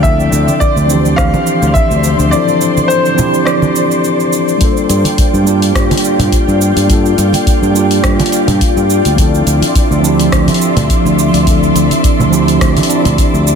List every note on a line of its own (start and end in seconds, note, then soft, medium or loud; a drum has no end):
0.00 0.29 D2 medium
0.00 4.57 D3 medium
0.00 0.85 F3 medium
0.00 0.85 C4 medium
0.00 0.86 D4 medium
0.00 4.57 C5 medium
0.00 4.57 D5 medium
0.00 0.62 E5 loud
0.00 4.57 C6 medium
0.00 kick loud
0.04 0.87 E4 medium
0.04 0.88 A4 medium
0.04 cabasa soft
0.20 cabasa soft
0.32 0.45 D2 loud
0.32 cabasa medium
0.48 high conga medium
0.48 cabasa soft
0.60 1.19 D5 medium
0.60 kick medium
0.60 cabasa soft
0.76 1.15 D2 medium
0.76 cabasa soft
0.86 2.27 F3 medium
0.86 2.28 C4 medium
0.86 2.29 D4 medium
0.86 cabasa medium
0.91 2.30 E3 medium
0.91 2.31 G4 loud
1.05 cabasa soft
1.16 1.31 D2 medium
1.16 1.66 F5 loud
1.16 kick loud
1.16 cross-stick medium
1.16 cabasa soft
1.34 high conga medium
1.34 cabasa soft
1.47 cabasa medium
1.62 1.73 D2 medium
1.62 cabasa soft
1.67 1.74 F5 medium
1.74 2.33 E5 medium
1.74 kick medium
1.74 cabasa soft
1.91 2.14 D2 medium
1.91 cabasa soft
2.04 cabasa medium
2.19 2.32 D2 medium
2.19 cabasa soft
2.29 3.13 F3 medium
2.29 3.14 C4 medium
2.29 3.15 D4 medium
2.29 2.85 D5 medium
2.33 3.16 E4 medium
2.33 3.17 A4 medium
2.33 cabasa soft
2.48 cabasa soft
2.61 cabasa medium
2.77 high conga medium
2.77 cabasa soft
2.88 3.48 C5 medium
2.88 cabasa soft
3.06 cabasa soft
3.14 4.56 F3 medium
3.14 4.57 C4 medium
3.14 4.58 D4 medium
3.18 4.58 E4 medium
3.18 4.59 G4 medium
3.18 low conga medium
3.18 cabasa medium
3.34 cabasa soft
3.45 4.28 D5 medium
3.45 cross-stick medium
3.45 cabasa soft
3.62 high conga medium
3.62 cabasa soft
3.76 cabasa medium
3.91 cabasa soft
4.04 cabasa soft
4.20 cabasa soft
4.33 cabasa medium
4.48 cabasa soft
4.57 5.42 G3 medium
4.57 5.42 A#3 medium
4.57 5.43 D4 medium
4.57 9.14 F4 medium
4.57 13.55 D5 medium
4.57 9.14 G5 medium
4.57 kick loud
4.57 open hi-hat medium
4.61 5.44 F4 medium
4.61 5.45 A4 medium
4.61 cabasa soft
4.77 cabasa soft
4.89 5.03 G2 medium
4.89 open hi-hat soft
4.89 cabasa medium
5.05 open hi-hat soft
5.05 high conga medium
5.05 cabasa soft
5.18 kick loud
5.18 open hi-hat medium
5.18 cabasa soft
5.34 5.72 G2 medium
5.34 cabasa soft
5.43 6.84 G3 medium
5.43 6.85 A#3 medium
5.43 6.86 D4 medium
5.47 6.87 F4 medium
5.47 6.88 G4 loud
5.47 cabasa medium
5.62 open hi-hat soft
5.62 cabasa soft
5.75 5.88 G2 medium
5.75 kick loud
5.75 cross-stick medium
5.75 open hi-hat medium
5.75 cabasa soft
5.91 open hi-hat soft
5.91 high conga medium
5.91 cabasa soft
5.97 open hi-hat medium
6.05 cabasa medium
6.19 6.30 G2 medium
6.19 open hi-hat soft
6.19 low conga medium
6.19 cabasa soft
6.32 kick loud
6.32 open hi-hat medium
6.32 cabasa soft
6.48 6.72 G2 medium
6.48 cabasa soft
6.61 cabasa medium
6.76 7.15 G2 medium
6.76 open hi-hat soft
6.76 cabasa soft
6.86 7.70 G3 medium
6.86 7.71 A#3 medium
6.86 7.72 D4 medium
6.86 kick loud
6.86 open hi-hat medium
6.90 7.73 F4 medium
6.90 7.74 A4 medium
6.90 cabasa soft
7.06 cabasa soft
7.18 7.31 G2 loud
7.18 open hi-hat soft
7.18 cabasa medium
7.33 open hi-hat soft
7.33 high conga medium
7.33 cabasa soft
7.47 kick loud
7.47 open hi-hat medium
7.47 cabasa soft
7.62 8.00 G2 medium
7.62 cabasa soft
7.72 9.13 G3 medium
7.72 9.14 A#3 medium
7.72 9.15 D4 medium
7.76 9.16 F4 medium
7.76 9.17 G4 medium
7.76 cabasa medium
7.91 open hi-hat soft
7.91 cabasa soft
8.04 8.17 G2 medium
8.04 kick loud
8.04 cross-stick medium
8.04 open hi-hat medium
8.04 cabasa soft
8.20 open hi-hat soft
8.20 high conga loud
8.20 cabasa soft
8.26 open hi-hat medium
8.32 open hi-hat soft
8.32 cabasa medium
8.48 8.59 G2 medium
8.48 open hi-hat soft
8.48 low conga medium
8.48 cabasa soft
8.61 kick loud
8.61 open hi-hat medium
8.61 cabasa soft
8.77 9.00 G2 medium
8.77 cabasa soft
8.90 cabasa medium
9.05 9.43 D2 medium
9.05 open hi-hat soft
9.05 cabasa soft
9.15 9.99 F3 medium
9.15 13.55 F3 medium
9.15 10.00 C4 medium
9.15 10.01 D4 medium
9.15 13.55 E5 medium
9.15 13.55 C6 medium
9.15 kick loud
9.15 open hi-hat medium
9.19 10.02 E4 medium
9.19 10.03 A4 medium
9.19 cabasa soft
9.35 cabasa soft
9.47 9.60 D2 medium
9.47 open hi-hat soft
9.47 cabasa medium
9.62 open hi-hat soft
9.62 high conga medium
9.62 cabasa soft
9.75 kick loud
9.75 open hi-hat medium
9.75 cabasa soft
9.91 10.29 D2 medium
9.91 cabasa soft
10.00 11.42 F3 medium
10.00 11.43 C4 medium
10.00 11.44 D4 medium
10.05 11.45 E4 medium
10.05 11.45 G4 loud
10.05 cabasa medium
10.20 open hi-hat soft
10.20 cabasa soft
10.32 10.45 D2 medium
10.32 kick loud
10.32 cross-stick medium
10.32 open hi-hat medium
10.32 cabasa soft
10.48 open hi-hat soft
10.48 high conga medium
10.48 cabasa soft
10.54 open hi-hat medium
10.62 cabasa medium
10.77 10.87 D2 medium
10.77 open hi-hat soft
10.77 low conga medium
10.77 cabasa soft
10.90 kick loud
10.90 open hi-hat medium
10.90 cabasa soft
11.05 11.29 D2 medium
11.05 cabasa soft
11.19 cabasa medium
11.34 11.72 D2 medium
11.34 open hi-hat soft
11.34 cabasa soft
11.43 12.27 F3 medium
11.43 12.28 C4 medium
11.43 12.29 D4 medium
11.43 kick loud
11.43 open hi-hat medium
11.48 12.30 E4 medium
11.48 12.31 A4 medium
11.48 cabasa soft
11.63 cabasa soft
11.75 11.88 D2 medium
11.75 open hi-hat soft
11.75 cabasa medium
11.91 open hi-hat soft
11.91 high conga medium
11.91 cabasa soft
12.04 kick loud
12.04 open hi-hat medium
12.04 cabasa soft
12.19 12.58 D2 medium
12.19 low conga medium
12.19 cabasa soft
12.30 12.84 F3 medium
12.30 12.86 C4 medium
12.30 12.87 D4 medium
12.30 12.87 E4 medium
12.30 12.88 G4 medium
12.30 cabasa medium
12.48 open hi-hat soft
12.48 cabasa soft
12.61 12.74 D2 medium
12.61 kick loud
12.61 cross-stick medium
12.61 open hi-hat medium
12.61 cabasa soft
12.77 open hi-hat soft
12.77 high conga loud
12.77 cabasa soft
12.83 13.55 F3 medium
12.83 open hi-hat medium
12.87 13.55 C4 medium
12.87 13.55 D4 medium
12.87 13.55 E4 medium
12.87 open hi-hat soft
12.87 cabasa medium
12.93 13.55 D5 medium
13.05 13.16 D2 loud
13.05 open hi-hat soft
13.05 low conga medium
13.05 cabasa soft
13.18 kick loud
13.18 open hi-hat medium
13.18 cabasa soft
13.34 13.55 D2 medium
13.34 cabasa soft
13.47 cabasa medium